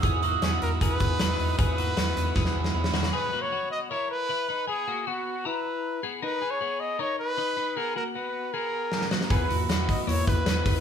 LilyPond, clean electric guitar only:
\new Staff \with { instrumentName = "Clean electric guitar" } { \time 4/4 \key e \lydian \tempo 4 = 155 <b gis'>8 <ais fis'>8 <b fis'>4 <b gis'>4 <dis' b'>8 <dis' b'>8 | <b gis'>8 <ais fis'>8 <b fis'>4 <b gis'>4. <ais fis'>8 | <b gis'>8 <ais fis'>8 <b fis'>4 <e' ais'>4 <e' b'>8 <dis' b'>8 | <b gis'>8 <ais fis'>8 <b fis'>4 <e' ais''>4. <b gis'>8 |
<dis' ais'>8 <b gis'>8 <b gis'>4 <dis' ais'>4 <dis' b'>8 <dis' b'>8 | <b gis'>8 <ais fis'>8 <b fis'>4 <b gis'>4. <ais fis'>8 | <b gis'>8 <ais fis'>8 <b fis'>4 <ais e'>4 <e' b'>8 <dis' b'>8 | }